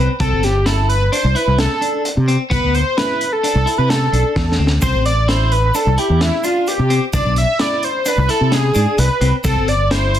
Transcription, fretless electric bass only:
0, 0, Header, 1, 2, 480
1, 0, Start_track
1, 0, Key_signature, 0, "major"
1, 0, Tempo, 462250
1, 208, Time_signature, 5, 2, 24, 8
1, 10586, End_track
2, 0, Start_track
2, 0, Title_t, "Fretless electric bass"
2, 0, Program_c, 0, 35
2, 208, Note_on_c, 0, 36, 95
2, 307, Note_off_c, 0, 36, 0
2, 334, Note_on_c, 0, 31, 77
2, 1121, Note_off_c, 0, 31, 0
2, 1288, Note_on_c, 0, 36, 84
2, 1387, Note_off_c, 0, 36, 0
2, 1528, Note_on_c, 0, 36, 79
2, 1725, Note_off_c, 0, 36, 0
2, 2251, Note_on_c, 0, 48, 77
2, 2447, Note_off_c, 0, 48, 0
2, 2610, Note_on_c, 0, 36, 93
2, 2707, Note_off_c, 0, 36, 0
2, 2727, Note_on_c, 0, 38, 68
2, 2925, Note_off_c, 0, 38, 0
2, 3686, Note_on_c, 0, 36, 83
2, 3785, Note_off_c, 0, 36, 0
2, 3926, Note_on_c, 0, 48, 75
2, 4222, Note_off_c, 0, 48, 0
2, 4284, Note_on_c, 0, 35, 70
2, 4383, Note_off_c, 0, 35, 0
2, 4529, Note_on_c, 0, 40, 69
2, 4744, Note_off_c, 0, 40, 0
2, 4766, Note_on_c, 0, 38, 77
2, 4982, Note_off_c, 0, 38, 0
2, 5008, Note_on_c, 0, 36, 96
2, 5105, Note_off_c, 0, 36, 0
2, 5129, Note_on_c, 0, 33, 77
2, 5917, Note_off_c, 0, 33, 0
2, 6088, Note_on_c, 0, 36, 75
2, 6186, Note_off_c, 0, 36, 0
2, 6328, Note_on_c, 0, 40, 81
2, 6525, Note_off_c, 0, 40, 0
2, 7051, Note_on_c, 0, 48, 75
2, 7246, Note_off_c, 0, 48, 0
2, 7408, Note_on_c, 0, 36, 89
2, 7506, Note_off_c, 0, 36, 0
2, 7526, Note_on_c, 0, 35, 80
2, 7724, Note_off_c, 0, 35, 0
2, 8487, Note_on_c, 0, 36, 85
2, 8586, Note_off_c, 0, 36, 0
2, 8730, Note_on_c, 0, 48, 73
2, 9025, Note_off_c, 0, 48, 0
2, 9088, Note_on_c, 0, 44, 77
2, 9187, Note_off_c, 0, 44, 0
2, 9325, Note_on_c, 0, 36, 89
2, 9425, Note_off_c, 0, 36, 0
2, 9560, Note_on_c, 0, 36, 98
2, 9663, Note_off_c, 0, 36, 0
2, 9809, Note_on_c, 0, 36, 95
2, 9908, Note_off_c, 0, 36, 0
2, 9924, Note_on_c, 0, 31, 68
2, 10586, Note_off_c, 0, 31, 0
2, 10586, End_track
0, 0, End_of_file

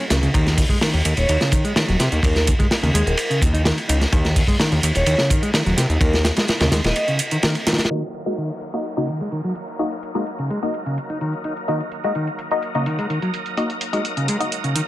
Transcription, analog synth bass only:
0, 0, Header, 1, 2, 480
1, 0, Start_track
1, 0, Key_signature, -6, "minor"
1, 0, Tempo, 472441
1, 351, Time_signature, 4, 2, 24, 8
1, 15116, End_track
2, 0, Start_track
2, 0, Title_t, "Analog synth bass"
2, 0, Program_c, 0, 38
2, 111, Note_on_c, 0, 37, 89
2, 283, Note_off_c, 0, 37, 0
2, 349, Note_on_c, 0, 39, 105
2, 655, Note_off_c, 0, 39, 0
2, 956, Note_on_c, 0, 39, 85
2, 1037, Note_off_c, 0, 39, 0
2, 1070, Note_on_c, 0, 39, 95
2, 1158, Note_off_c, 0, 39, 0
2, 1193, Note_on_c, 0, 27, 92
2, 1276, Note_off_c, 0, 27, 0
2, 1311, Note_on_c, 0, 39, 100
2, 1398, Note_off_c, 0, 39, 0
2, 1916, Note_on_c, 0, 27, 81
2, 1998, Note_off_c, 0, 27, 0
2, 2031, Note_on_c, 0, 48, 104
2, 2118, Note_off_c, 0, 48, 0
2, 2156, Note_on_c, 0, 39, 95
2, 2238, Note_off_c, 0, 39, 0
2, 2265, Note_on_c, 0, 39, 100
2, 2574, Note_off_c, 0, 39, 0
2, 2875, Note_on_c, 0, 39, 89
2, 2957, Note_off_c, 0, 39, 0
2, 2992, Note_on_c, 0, 39, 90
2, 3078, Note_off_c, 0, 39, 0
2, 3114, Note_on_c, 0, 27, 93
2, 3197, Note_off_c, 0, 27, 0
2, 3473, Note_on_c, 0, 39, 86
2, 3777, Note_off_c, 0, 39, 0
2, 3954, Note_on_c, 0, 37, 90
2, 4124, Note_off_c, 0, 37, 0
2, 4194, Note_on_c, 0, 39, 99
2, 4498, Note_off_c, 0, 39, 0
2, 4796, Note_on_c, 0, 39, 92
2, 4878, Note_off_c, 0, 39, 0
2, 4908, Note_on_c, 0, 39, 87
2, 4996, Note_off_c, 0, 39, 0
2, 5035, Note_on_c, 0, 27, 92
2, 5117, Note_off_c, 0, 27, 0
2, 5147, Note_on_c, 0, 39, 103
2, 5236, Note_off_c, 0, 39, 0
2, 5751, Note_on_c, 0, 27, 82
2, 5835, Note_off_c, 0, 27, 0
2, 5866, Note_on_c, 0, 48, 108
2, 5955, Note_off_c, 0, 48, 0
2, 5989, Note_on_c, 0, 39, 99
2, 6074, Note_off_c, 0, 39, 0
2, 6103, Note_on_c, 0, 39, 103
2, 6412, Note_off_c, 0, 39, 0
2, 6711, Note_on_c, 0, 39, 88
2, 6795, Note_off_c, 0, 39, 0
2, 6827, Note_on_c, 0, 39, 92
2, 6916, Note_off_c, 0, 39, 0
2, 6951, Note_on_c, 0, 27, 99
2, 7035, Note_off_c, 0, 27, 0
2, 15116, End_track
0, 0, End_of_file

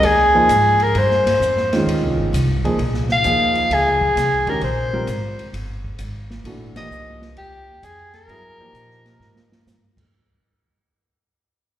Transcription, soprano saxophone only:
0, 0, Header, 1, 2, 480
1, 0, Start_track
1, 0, Tempo, 458716
1, 998, Time_signature, 4, 2, 24, 8
1, 12346, End_track
2, 0, Start_track
2, 0, Title_t, "Soprano saxophone"
2, 0, Program_c, 0, 64
2, 50, Note_on_c, 0, 68, 95
2, 862, Note_on_c, 0, 70, 80
2, 877, Note_off_c, 0, 68, 0
2, 1024, Note_on_c, 0, 72, 79
2, 1040, Note_off_c, 0, 70, 0
2, 1971, Note_off_c, 0, 72, 0
2, 3265, Note_on_c, 0, 77, 115
2, 3907, Note_on_c, 0, 68, 92
2, 3922, Note_off_c, 0, 77, 0
2, 4698, Note_on_c, 0, 70, 77
2, 4714, Note_off_c, 0, 68, 0
2, 4848, Note_off_c, 0, 70, 0
2, 4854, Note_on_c, 0, 72, 89
2, 5765, Note_off_c, 0, 72, 0
2, 7085, Note_on_c, 0, 75, 97
2, 7529, Note_off_c, 0, 75, 0
2, 7717, Note_on_c, 0, 67, 99
2, 8207, Note_on_c, 0, 68, 90
2, 8222, Note_off_c, 0, 67, 0
2, 8513, Note_off_c, 0, 68, 0
2, 8519, Note_on_c, 0, 70, 113
2, 10075, Note_off_c, 0, 70, 0
2, 12346, End_track
0, 0, End_of_file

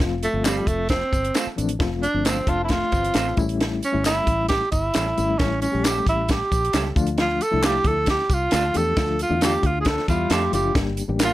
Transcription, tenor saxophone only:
0, 0, Header, 1, 2, 480
1, 0, Start_track
1, 0, Key_signature, -1, "major"
1, 0, Tempo, 448096
1, 2, Time_signature, 4, 2, 24, 8
1, 12141, End_track
2, 0, Start_track
2, 0, Title_t, "Tenor saxophone"
2, 0, Program_c, 0, 66
2, 253, Note_on_c, 0, 57, 81
2, 480, Note_on_c, 0, 55, 82
2, 496, Note_off_c, 0, 57, 0
2, 724, Note_on_c, 0, 57, 87
2, 740, Note_off_c, 0, 55, 0
2, 954, Note_off_c, 0, 57, 0
2, 961, Note_on_c, 0, 60, 94
2, 1644, Note_off_c, 0, 60, 0
2, 2172, Note_on_c, 0, 62, 90
2, 2416, Note_on_c, 0, 60, 85
2, 2432, Note_off_c, 0, 62, 0
2, 2666, Note_on_c, 0, 65, 95
2, 2682, Note_off_c, 0, 60, 0
2, 2823, Note_off_c, 0, 65, 0
2, 2830, Note_on_c, 0, 64, 65
2, 2909, Note_on_c, 0, 65, 98
2, 2925, Note_off_c, 0, 64, 0
2, 3624, Note_off_c, 0, 65, 0
2, 4115, Note_on_c, 0, 61, 84
2, 4330, Note_off_c, 0, 61, 0
2, 4348, Note_on_c, 0, 64, 100
2, 4790, Note_off_c, 0, 64, 0
2, 4804, Note_on_c, 0, 67, 102
2, 5034, Note_off_c, 0, 67, 0
2, 5051, Note_on_c, 0, 64, 94
2, 5767, Note_on_c, 0, 61, 88
2, 5783, Note_off_c, 0, 64, 0
2, 6008, Note_off_c, 0, 61, 0
2, 6015, Note_on_c, 0, 61, 87
2, 6265, Note_on_c, 0, 67, 100
2, 6281, Note_off_c, 0, 61, 0
2, 6502, Note_off_c, 0, 67, 0
2, 6519, Note_on_c, 0, 64, 87
2, 6759, Note_on_c, 0, 67, 83
2, 6775, Note_off_c, 0, 64, 0
2, 7468, Note_off_c, 0, 67, 0
2, 7715, Note_on_c, 0, 65, 91
2, 7950, Note_on_c, 0, 69, 96
2, 7967, Note_off_c, 0, 65, 0
2, 8196, Note_on_c, 0, 67, 99
2, 8212, Note_off_c, 0, 69, 0
2, 8434, Note_on_c, 0, 69, 97
2, 8450, Note_off_c, 0, 67, 0
2, 8664, Note_off_c, 0, 69, 0
2, 8677, Note_on_c, 0, 67, 89
2, 8927, Note_on_c, 0, 65, 91
2, 8943, Note_off_c, 0, 67, 0
2, 9396, Note_on_c, 0, 69, 103
2, 9412, Note_off_c, 0, 65, 0
2, 9863, Note_off_c, 0, 69, 0
2, 9880, Note_on_c, 0, 65, 81
2, 10089, Note_off_c, 0, 65, 0
2, 10115, Note_on_c, 0, 67, 88
2, 10347, Note_on_c, 0, 65, 80
2, 10364, Note_off_c, 0, 67, 0
2, 10499, Note_off_c, 0, 65, 0
2, 10505, Note_on_c, 0, 68, 74
2, 10581, Note_on_c, 0, 69, 92
2, 10597, Note_off_c, 0, 68, 0
2, 10801, Note_off_c, 0, 69, 0
2, 10807, Note_on_c, 0, 65, 81
2, 11061, Note_on_c, 0, 67, 94
2, 11077, Note_off_c, 0, 65, 0
2, 11283, Note_off_c, 0, 67, 0
2, 11289, Note_on_c, 0, 67, 79
2, 11510, Note_off_c, 0, 67, 0
2, 12043, Note_on_c, 0, 65, 85
2, 12141, Note_off_c, 0, 65, 0
2, 12141, End_track
0, 0, End_of_file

